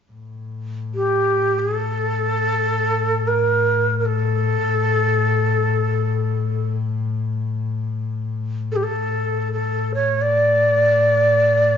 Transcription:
0.12 double bass A2
0.95 ney G4
1.59 ney A4
3.27 ney A#4
3.99 ney A#4
4.06 ney A4
8.72 ney A4
8.76 ney G4
8.83 ney A4
8.96 double bass A2
9.53 ney A4
9.94 ney C#5
10.22 ney D5

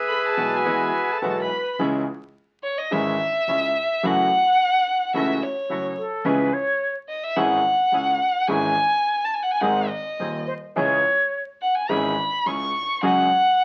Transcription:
Already playing: bandoneon G#4 B4 E5
0.09 flute A4, violin B5
0.27 flute G#4, violin A5
0.37 upright bass B1, grand piano B1 B2 E3 G#3 B3 F#4, bandoneon G#3 E4 F#4
0.56 flute F#4, violin G#5
0.64 upright bass E2, grand piano E2 E3 G#3 B3 F#4, bandoneon G#3 E4 F#4
1.11 flute A4, violin A5
1.22 upright bass B1, grand piano B1 B2 E3 G#3 B3 F#4, bandoneon G#3 E4 F#4
1.42 flute B4, violin B5
1.79 upright bass C#2, grand piano C#2 C#3 E3 G#3 C#4 G#4, bandoneon G#3 C#4 E4
2.63 violin C#5
2.78 violin D#5
2.91 grand piano G#1 G#2 E3 G#3 C#4 G#4, upright bass G#1, bandoneon G#3 C#4 E4, violin E5
3.48 upright bass C#2, grand piano C#2 C#3, bandoneon G#3 C#4 E4
4.03 upright bass F#1, grand piano F#2 E3 F#3 A3 C#4 F#4, bandoneon A3 E4 F#4, violin F#5
5.14 upright bass C#2, grand piano C#2 C#3 E3 A3 C#4 F#4, bandoneon A3 E4 F#4, violin E5
5.43 violin C#5
5.69 upright bass F#1, grand piano F#2 F#3, bandoneon A3 E4 F#4
5.98 flute A4
6.24 upright bass C#2, grand piano C#2 C#3 E3 G#3 C#4 G#4, bandoneon C#4 E4 G#4, flute B4
6.54 flute C#5
7.09 violin D#5
7.24 violin E5
7.36 grand piano G#1 G#2 E3 G#3 C#4 G#4, upright bass G#1, bandoneon C#4 E4 G#4, violin F#5
7.92 upright bass C#2, grand piano C#2 C#3, bandoneon C#4 E4 G#4
8.47 upright bass G#1, grand piano G#1 G#2 E3 G#3 C#4 G#4, bandoneon C#4 E4 G#4, violin G#5
9.25 violin A5
9.34 violin G#5
9.43 violin F#5
9.51 violin G#5
9.60 grand piano G#1 G#2 D#3 G#3 C4 G#4, upright bass G#1, bandoneon C4 D#4 G#4, violin F#5
9.88 violin D#5
10.19 grand piano D#1 D#2, upright bass D#2, bandoneon C4 D#4 G#4
10.47 flute C5
10.76 grand piano C#2 C#3 E3 G#3 C#4 G#4, upright bass C#2, bandoneon C#4 E4 G#4, flute C#5
11.62 violin F#5
11.75 violin G#5
11.89 upright bass G#1, grand piano G#1 G#2 E3 G#3 C#4 G#4, bandoneon C#4 E4 G#4, violin B5
12.46 grand piano C#2 C#3, upright bass C#2, bandoneon C#4 E4 G#4, violin C#6
13.02 upright bass F#1, grand piano F#2 F#3 G#3 C#4 G#4, bandoneon C#4 F#4 G#4, violin F#5

